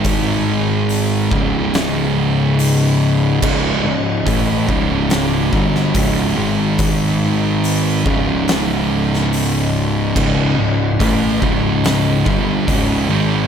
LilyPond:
<<
  \new Staff \with { instrumentName = "Synth drone" } { \time 4/4 \key gis \phrygian \tempo 4 = 71 << { <gis gis'>4. <cis' dis''>2~ <cis' dis''>8~ | <cis' dis''>2.~ <cis' dis''>8 gis8~ | gis4. <cis' dis''>2~ <cis' dis''>8~ | <cis' dis''>2.~ <cis' dis''>8 gis8 | } \\ { dis'4. gis'2~ gis'8~ | gis'4. fis'2 dis'8~ | dis'4. r2 r8 | r2. r8 dis'8 | } >> }
  \new Staff \with { instrumentName = "Distorted electric guitar" } { \clef bass \time 4/4 \key gis \phrygian <gis, dis gis>4. <cis, gis, cis>2~ <cis, gis, cis>8 | <cis, gis, cis>8 <cis, gis,>8 <a, e a>8 <cis, gis, cis>4 <g, d g>8 <cis, gis, cis>8 <gis, dis gis>8~ | <gis, dis gis>4. <cis, gis, cis>2~ <cis, gis, cis>8 | <cis, gis, cis>8 <cis, gis,>8 <a, e a>8 <cis, gis, cis>4 <g, d g>8 <cis, gis, cis>8 <gis, dis gis>8 | }
  \new Staff \with { instrumentName = "Distorted electric guitar" } { \clef bass \time 4/4 \key gis \phrygian <gis, dis gis>4. <cis, gis, cis>2~ <cis, gis, cis>8 | <cis, gis, cis>8 <cis, gis,>8 <a, e a>8 <cis, gis, cis>4 <g, d g>8 <cis, gis, cis>8 <gis, dis gis>8~ | <gis, dis gis>4. <cis, gis, cis>2~ <cis, gis, cis>8 | <cis, gis, cis>8 <cis, gis,>8 <a, e a>8 <cis, gis, cis>4 <g, d g>8 <cis, gis, cis>8 <gis, dis gis>8 | }
  \new Staff \with { instrumentName = "Picked electric bass" } { \clef bass \time 4/4 \key gis \phrygian gis,,4. cis,,2~ cis,,8 | cis,,8 cis,,8 a,,8 cis,,4 g,,8 cis,,8 gis,,8~ | gis,,4. cis,,2~ cis,,8 | cis,,8 cis,,8 a,,8 cis,,4 g,,8 cis,,8 gis,,8 | }
  \new DrumStaff \with { instrumentName = "Drums" } \drummode { \time 4/4 <hho bd>4 hho8 bd8 <hho sn>4 hho4 | <cymc bd>4 <hho bd>8 bd8 <hho sn>8 bd16 sn16 <hho bd>4 | <hho bd>4 hho8 bd8 <hho sn>8. sn16 hho4 | <cymc bd>4 <hho bd>8 bd8 <hho sn>8 bd8 <hho bd>4 | }
>>